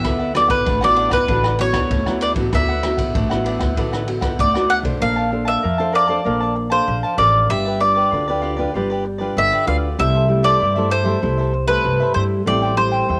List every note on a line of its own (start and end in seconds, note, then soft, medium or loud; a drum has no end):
0.00 0.30 B3 medium
0.00 0.19 D4 soft
0.00 0.31 E4 medium
0.00 0.31 F#4 medium
0.00 0.32 E5 medium
0.04 0.44 D2 medium
0.04 0.64 D3 soft
0.04 0.19 B4 soft
0.04 0.19 D5 soft
0.04 0.18 F#5 medium
0.04 kick medium
0.04 cross-stick medium
0.04 ride soft
0.19 0.33 B4 soft
0.19 0.33 D5 medium
0.19 0.34 F#5 medium
0.34 0.65 B3 medium
0.34 0.66 E4 medium
0.34 0.66 F#4 medium
0.34 0.50 D5 medium
0.34 muted cavaquinho stroke soft
0.34 cross-stick medium
0.34 ride soft
0.48 0.63 A1 medium
0.48 0.83 B4 medium
0.48 0.65 B4 soft
0.48 0.65 D5 medium
0.48 0.64 F#5 medium
0.48 kick medium
0.48 ride soft
0.65 1.06 A1 medium
0.65 1.27 A3 medium
0.65 0.80 D4 soft
0.65 0.81 B4 medium
0.65 0.81 D5 medium
0.65 0.80 F#5 medium
0.65 kick medium
0.65 ride soft
0.81 1.24 B3 medium
0.81 1.25 E4 medium
0.81 1.25 F#4 medium
0.81 0.95 B4 medium
0.81 0.96 D5 medium
0.81 1.12 D5 loud
0.81 0.96 F#5 medium
0.81 cross-stick medium
0.95 1.11 D4 medium
0.95 1.11 B4 medium
0.95 1.10 D5 medium
0.95 1.09 F#5 medium
0.95 ride soft
1.10 1.25 D2 medium
1.10 1.27 B4 medium
1.10 1.57 B4 medium
1.10 1.27 D5 medium
1.10 1.26 F#5 medium
1.10 kick medium
1.10 cross-stick medium
1.10 ride soft
1.28 1.68 A1 medium
1.28 1.88 D3 soft
1.28 1.47 B3 medium
1.28 1.43 D4 medium
1.28 1.48 E4 medium
1.28 1.48 F#4 medium
1.28 1.43 B4 medium
1.28 1.43 D5 medium
1.28 1.42 F#5 medium
1.28 kick medium
1.28 ride soft
1.44 1.58 B4 medium
1.44 1.58 D5 medium
1.44 1.58 F#5 medium
1.44 cross-stick medium
1.59 2.01 B3 medium
1.59 2.02 E4 medium
1.59 2.02 F#4 medium
1.59 2.19 C#5 medium
1.59 muted cavaquinho stroke soft
1.59 ride soft
1.72 1.87 D2 medium
1.72 2.05 B4 soft
1.72 2.05 D5 medium
1.72 2.04 F#5 medium
1.72 kick medium
1.72 cross-stick medium
1.72 ride soft
1.91 2.31 D2 medium
1.91 2.50 A3 medium
1.91 kick medium
1.91 ride soft
2.06 2.33 B3 medium
2.06 2.33 E4 medium
2.06 2.33 F#4 medium
2.06 2.20 B4 medium
2.06 2.21 D5 medium
2.06 2.21 F#5 medium
2.06 cross-stick medium
2.20 2.51 D4 soft
2.20 2.52 B4 soft
2.20 2.52 D5 medium
2.20 2.31 D5 medium
2.20 2.52 F#5 medium
2.20 ride medium
2.34 2.49 A1 medium
2.34 2.48 B3 medium
2.34 2.48 E4 medium
2.34 2.48 F#4 medium
2.34 kick medium
2.34 ride soft
2.53 2.93 D2 medium
2.53 3.13 D3 soft
2.53 2.72 B3 medium
2.53 2.67 D4 medium
2.53 2.72 E4 soft
2.53 2.72 F#4 medium
2.53 2.68 B4 soft
2.53 2.68 D5 medium
2.53 4.67 E5 medium
2.53 2.68 F#5 soft
2.53 kick medium
2.53 cross-stick medium
2.53 ride soft
2.69 2.82 B4 soft
2.69 2.83 D5 medium
2.69 2.83 F#5 medium
2.83 3.13 B3 medium
2.83 3.14 E4 medium
2.83 3.14 F#4 medium
2.83 muted cavaquinho stroke soft
2.83 cross-stick medium
2.83 ride soft
2.97 3.11 A1 medium
2.97 3.14 B4 medium
2.97 3.14 D5 medium
2.97 3.13 F#5 medium
2.97 kick medium
2.97 ride medium
3.14 3.55 A1 medium
3.14 3.74 A3 medium
3.14 3.29 D4 soft
3.14 3.30 B4 medium
3.14 3.30 D5 medium
3.14 3.29 F#5 soft
3.14 kick medium
3.14 ride medium
3.30 3.73 B3 medium
3.30 3.73 E4 medium
3.30 3.73 F#4 medium
3.30 3.44 B4 medium
3.30 3.45 D5 medium
3.30 3.45 F#5 medium
3.30 cross-stick medium
3.44 3.60 D4 medium
3.44 3.60 B4 medium
3.44 3.59 D5 medium
3.44 3.58 F#5 medium
3.44 ride soft
3.59 3.73 D2 medium
3.59 3.76 B4 soft
3.59 3.76 D5 medium
3.59 3.75 F#5 medium
3.59 kick medium
3.59 cross-stick medium
3.59 ride soft
3.76 4.17 A1 medium
3.76 4.36 D3 medium
3.76 4.04 B3 medium
3.76 3.91 D4 medium
3.76 4.04 E4 medium
3.76 4.04 F#4 medium
3.76 3.92 B4 medium
3.76 3.92 D5 medium
3.76 3.91 F#5 medium
3.76 kick medium
3.76 ride soft
3.92 4.06 B4 medium
3.92 4.07 D5 medium
3.92 4.07 F#5 medium
3.92 cross-stick medium
4.07 4.50 B3 soft
4.07 4.50 E4 medium
4.07 4.50 F#4 medium
4.07 muted cavaquinho stroke soft
4.07 ride soft
4.21 4.35 D2 medium
4.21 4.54 B4 medium
4.21 4.53 D5 medium
4.21 4.52 F#5 medium
4.21 kick medium
4.21 cross-stick medium
4.21 ride soft
4.39 4.79 D2 medium
4.39 4.98 A3 medium
4.39 4.69 D5 medium
4.39 kick medium
4.39 ride soft
4.54 4.81 B3 medium
4.54 4.82 E4 medium
4.54 4.82 F#4 medium
4.54 4.68 B4 medium
4.54 4.68 D5 medium
4.54 4.69 F#5 medium
4.54 cross-stick medium
4.68 4.99 D4 soft
4.68 5.00 B4 soft
4.68 5.00 D5 soft
4.68 4.78 F#5 loud
4.68 5.00 F#5 medium
4.68 ride soft
4.83 4.98 B1 medium
4.83 5.27 D4 medium
4.83 5.27 A4 medium
4.83 5.27 C5 medium
4.83 kick medium
4.83 ride soft
5.00 5.55 A#1 medium
5.00 5.60 A#3 soft
5.00 5.15 A#4 soft
5.00 5.16 D5 soft
5.00 5.50 F5 medium
5.00 5.16 F5 soft
5.00 5.15 A5 medium
5.16 5.30 D5 soft
5.16 5.31 F5 medium
5.16 5.31 A5 medium
5.31 5.61 D4 medium
5.31 5.62 A4 medium
5.31 5.62 C5 medium
5.31 muted cavaquinho stroke soft
5.45 5.62 D5 medium
5.45 5.95 E5 medium
5.45 5.62 F5 medium
5.45 5.61 A5 medium
5.62 6.17 F2 medium
5.62 6.22 F3 soft
5.62 5.77 A#4 medium
5.62 5.78 D5 soft
5.62 5.78 F5 medium
5.62 5.77 A5 medium
5.78 6.05 D4 medium
5.78 6.05 A4 medium
5.78 6.06 C5 medium
5.78 5.92 D5 medium
5.78 5.93 F5 medium
5.78 5.93 A5 medium
5.92 6.08 A#4 medium
5.92 6.08 D5 medium
5.92 6.69 D5 medium
5.92 6.08 F5 medium
5.92 6.06 A5 medium
6.07 6.20 D4 medium
6.07 6.20 A4 medium
6.07 6.21 C5 medium
6.07 6.24 D5 medium
6.07 6.24 F5 medium
6.07 6.23 A5 medium
6.25 6.79 A#1 medium
6.25 6.85 A#3 soft
6.25 6.67 D4 medium
6.25 6.67 A4 soft
6.25 6.40 A#4 medium
6.25 6.67 C5 soft
6.25 6.40 D5 medium
6.25 6.40 F5 medium
6.25 6.39 A5 medium
6.40 6.55 D5 medium
6.40 6.55 F5 medium
6.40 6.55 A5 medium
6.55 muted cavaquinho stroke soft
6.70 7.14 D4 medium
6.70 7.14 A4 medium
6.70 7.15 C5 medium
6.70 7.14 C5 medium
6.70 7.02 D5 medium
6.70 7.02 F5 medium
6.70 7.01 A5 medium
6.88 7.01 A#1 medium
6.88 7.47 F3 medium
7.03 7.17 D5 medium
7.03 7.18 F5 medium
7.03 7.18 A5 medium
7.18 7.45 A1 loud
7.18 7.48 D4 medium
7.18 7.48 A4 medium
7.18 7.48 A#4 medium
7.18 7.48 C5 medium
7.18 7.47 D5 medium
7.18 7.49 D5 soft
7.18 7.49 F5 medium
7.18 7.49 A5 soft
7.49 8.03 G1 medium
7.49 8.09 G3 soft
7.49 7.76 D4 soft
7.49 7.64 F4 soft
7.49 7.77 F4 soft
7.49 7.65 G4 soft
7.49 7.65 B4 soft
7.49 7.77 B4 soft
7.49 7.64 D5 medium
7.49 7.82 E5 loud
7.65 7.79 G4 soft
7.65 7.80 B4 medium
7.65 7.80 D5 medium
7.80 8.23 D4 medium
7.80 8.23 F4 medium
7.80 8.23 B4 medium
7.80 9.01 D5 medium
7.80 muted cavaquinho stroke soft
7.95 8.11 G4 medium
7.95 8.11 B4 medium
7.95 8.10 D5 medium
8.11 8.65 D2 medium
8.11 8.72 D3 medium
8.11 8.26 F4 medium
8.11 8.26 G4 soft
8.11 8.27 B4 medium
8.11 8.26 D5 medium
8.28 8.55 D4 medium
8.28 8.55 F4 medium
8.28 8.41 G4 medium
8.28 8.42 B4 medium
8.28 8.55 B4 medium
8.28 8.42 D5 medium
8.42 8.57 F4 medium
8.42 8.57 G4 medium
8.42 8.57 B4 medium
8.42 8.55 D5 medium
8.56 8.69 D4 medium
8.56 8.69 F4 medium
8.56 8.73 G4 medium
8.56 8.73 B4 medium
8.56 8.70 B4 medium
8.56 8.72 D5 medium
8.74 9.28 G1 medium
8.74 9.34 G3 medium
8.74 9.04 D4 medium
8.74 8.88 F4 medium
8.74 9.04 F4 medium
8.74 8.89 G4 medium
8.74 9.04 B4 medium
8.74 8.89 B4 medium
8.74 8.89 D5 medium
8.90 9.04 G4 medium
8.90 9.04 B4 medium
8.90 9.04 D5 medium
9.04 muted cavaquinho stroke soft
9.18 9.62 D4 medium
9.18 9.62 F4 medium
9.18 9.51 G4 medium
9.18 9.50 B4 medium
9.18 9.63 B4 medium
9.18 9.49 D5 medium
9.37 9.50 G1 medium
9.37 9.96 D3 medium
9.37 9.66 E5 medium
9.52 9.66 G4 medium
9.52 9.67 B4 medium
9.52 9.66 D5 medium
9.66 9.94 D2 medium
9.66 9.87 D4 medium
9.66 9.97 F4 soft
9.66 9.87 F4 soft
9.66 9.97 G4 soft
9.66 9.88 B4 medium
9.66 9.97 B4 medium
9.66 9.98 D5 medium
9.66 9.76 F5 medium
9.98 10.51 C2 loud
9.98 10.57 C3 medium
9.98 10.24 G3 medium
9.98 10.25 A3 soft
9.98 10.13 E4 medium
9.98 10.25 E4 medium
9.98 10.13 A4 soft
9.98 10.14 C5 medium
9.98 10.44 E5 loud
9.98 10.13 E5 medium
10.14 10.28 A4 soft
10.14 10.28 C5 medium
10.14 10.28 E5 medium
10.28 10.58 G3 medium
10.28 10.58 A3 medium
10.28 10.58 E4 medium
10.28 muted cavaquinho stroke soft
10.43 10.59 A4 medium
10.43 10.59 C5 medium
10.43 10.91 D5 medium
10.43 10.58 E5 medium
10.60 11.19 G2 medium
10.60 11.13 G2 medium
10.60 10.74 E4 medium
10.60 10.75 A4 soft
10.60 10.75 C5 medium
10.60 10.74 E5 medium
10.76 11.02 G3 medium
10.76 11.03 A3 medium
10.76 11.03 E4 medium
10.76 10.89 A4 medium
10.76 10.90 C5 medium
10.76 10.90 E5 medium
10.90 11.05 E4 medium
10.90 11.05 A4 medium
10.90 11.67 C5 medium
10.90 11.05 C5 medium
10.90 11.03 E5 medium
11.05 11.17 G3 medium
11.05 11.17 A3 medium
11.05 11.17 E4 medium
11.05 11.21 A4 medium
11.05 11.21 C5 medium
11.05 11.20 E5 medium
11.22 11.76 C2 medium
11.22 11.82 C3 medium
11.22 11.52 G3 medium
11.22 11.52 A3 medium
11.22 11.37 E4 medium
11.22 11.52 E4 medium
11.22 11.37 A4 medium
11.22 11.37 C5 medium
11.22 11.37 E5 medium
11.38 11.52 A4 medium
11.38 11.53 C5 medium
11.38 11.52 E5 medium
11.53 muted cavaquinho stroke soft
11.67 12.10 G3 medium
11.67 12.10 A3 medium
11.67 12.10 E4 medium
11.67 11.99 A4 medium
11.67 12.14 B4 medium
11.67 11.99 C5 medium
11.67 11.98 E5 medium
11.85 11.98 C2 medium
11.85 12.44 G2 medium
12.00 12.14 A4 soft
12.00 12.15 C5 medium
12.00 12.14 E5 medium
12.14 12.42 G2 medium
12.14 12.35 G3 medium
12.14 12.36 A3 medium
12.14 12.45 E4 soft
12.14 12.36 E4 medium
12.14 12.45 A4 medium
12.14 12.23 C5 medium
12.14 12.46 C5 soft
12.14 12.46 E5 medium
12.46 13.00 A1 loud
12.46 13.05 A2 medium
12.46 12.72 G3 medium
12.46 12.73 C4 soft
12.46 12.73 E4 medium
12.46 12.61 A4 medium
12.46 12.61 C5 medium
12.46 12.76 D5 loud
12.46 12.62 E5 medium
12.46 12.61 G5 medium
12.62 12.76 C5 medium
12.62 12.76 E5 medium
12.62 12.77 G5 medium
12.76 13.19 G3 medium
12.76 13.19 C4 medium
12.76 13.19 E4 medium
12.76 13.20 C5 medium
12.76 muted cavaquinho stroke soft
12.92 13.08 C5 medium
12.92 13.07 E5 medium
12.92 13.07 G5 medium
13.08 13.20 E2 medium
13.08 13.20 E3 medium
13.08 13.20 A4 soft
13.08 13.20 C5 medium
13.08 13.20 E5 medium
13.08 13.20 G5 medium